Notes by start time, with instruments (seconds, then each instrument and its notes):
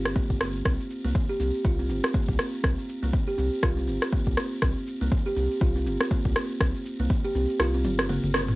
Already playing: analog synth bass G1
0.05 kalimba C4, cross-stick, shaker
0.16 kalimba A#3, kick, shaker
0.30 analog synth bass G1, kick
0.41 kalimba C4, cross-stick, shaker
0.55 shaker
0.65 analog synth bass C2, kalimba C4, kick, cross-stick, shaker
0.80 shaker
0.90 shaker
1.05 analog synth bass C2, kalimba A#3, shaker
1.15 kick, shaker
1.29 kalimba G4
1.40 analog synth bass C2, kalimba C4, shaker
1.54 shaker
1.65 analog synth bass C2, kalimba F4, kick, shaker
1.79 kalimba C4, shaker
1.90 analog synth bass G1, kalimba C4, shaker
2.04 kalimba C4, cross-stick, shaker
2.14 kalimba A#3, kick, shaker
2.29 analog synth bass C2, kick
2.39 kalimba C4, cross-stick, shaker
2.53 shaker
2.64 analog synth bass C2, kalimba C4, kick, cross-stick, shaker
2.78 shaker
2.89 shaker
3.03 analog synth bass C2, kalimba A#3, shaker
3.13 kick, shaker
3.27 kalimba G4, shaker
3.38 analog synth bass C2, kalimba C4, shaker
3.53 shaker
3.63 analog synth bass C2, kalimba F4, kick, cross-stick, shaker
3.77 kalimba C4, shaker
3.88 analog synth bass G1, kalimba C4, shaker
4.02 kalimba C4, cross-stick, shaker
4.12 kalimba A#3, kick, shaker
4.27 analog synth bass C2, kick
4.37 kalimba C4, cross-stick, shaker
4.52 shaker
4.62 analog synth bass C2, kalimba C4, kick, cross-stick, shaker
4.77 shaker
4.87 shaker
5.01 analog synth bass C2, kalimba A#3, shaker
5.12 kick, shaker
5.26 kalimba G4
5.36 analog synth bass C2, kalimba C4, shaker
5.51 shaker
5.61 analog synth bass C2, kalimba F4, kick, shaker
5.76 kalimba C4, shaker
5.86 analog synth bass G1, kalimba C4, shaker
6.01 kalimba C4, cross-stick, shaker
6.11 kalimba A#3, kick, shaker
6.25 analog synth bass C2, kick
6.36 kalimba C4, cross-stick, shaker
6.50 shaker
6.61 analog synth bass C2, kalimba C4, kick, cross-stick, shaker
6.75 shaker
6.86 shaker
7.00 analog synth bass C2, kalimba A#3, shaker
7.10 kick, shaker
7.25 kalimba G4, shaker
7.35 analog synth bass C2, kalimba C4, shaker
7.49 shaker
7.60 analog synth bass C2, kalimba F4, cross-stick, shaker
7.74 kalimba C4, shaker
7.85 analog synth bass G1, kalimba C4, high tom, shaker
7.99 kalimba C4, cross-stick, shaker
8.09 kalimba A#3, mid tom, shaker
8.24 analog synth bass G1, mid tom, shaker
8.34 kalimba C4, cross-stick, shaker
8.48 mid tom, shaker